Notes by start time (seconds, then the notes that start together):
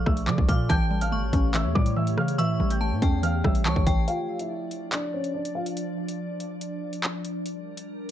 Already playing: A#2 F3 A#3 D4 A4 D5 C#6
0.06 A#1 A3 E5 E6, kick, cross-stick
0.17 closed hi-hat
0.27 D3 F3 D5 D6, clap
0.38 A#1, kick
0.49 A#2 F3 F5 D6 F6, kick, closed hi-hat
0.69 A1 E3 A3 G4 C#5 G5 A5 G6, kick, closed hi-hat
0.91 G3
1.01 F5 F6, closed hi-hat
1.12 G1 A3 C#6
1.23 A1
1.33 A1 C#4, kick, closed hi-hat
1.54 E3 E5 E6, clap, closed hi-hat
1.65 E2
1.75 A2 G3 D5 D6, kick
1.86 closed hi-hat
1.96 E3 E5 E6
2.07 closed hi-hat
2.17 C#3 E3 F5 F6, cross-stick
2.28 closed hi-hat
2.38 A2 E3 E5 C#6 E6, closed hi-hat
2.60 A1 G3
2.70 G5 G6, closed hi-hat
2.81 A3 A5
2.92 A2
3.02 E2 C#4 G5, kick, closed hi-hat
3.23 E3 F5 F6, closed hi-hat
3.44 A1 G3 E5 E6, kick, cross-stick
3.55 closed hi-hat
3.65 C#2 E3 C#5 A5 C#6, clap
3.76 A1, kick
3.87 A1 E3 G5, kick, closed hi-hat
4.08 F3 D4 F4 D5 F5, closed hi-hat
4.39 E4 E5, closed hi-hat
4.71 closed hi-hat
4.92 D4 D5, clap, closed hi-hat
5.14 C#4 C#5
5.24 closed hi-hat
5.34 D4 D5
5.45 closed hi-hat
5.55 F4 F5
5.66 closed hi-hat
5.77 closed hi-hat
6.08 closed hi-hat
6.40 closed hi-hat
6.61 closed hi-hat
6.93 closed hi-hat
7.04 clap
7.25 closed hi-hat
7.46 G3 D4 A#4, closed hi-hat
7.77 closed hi-hat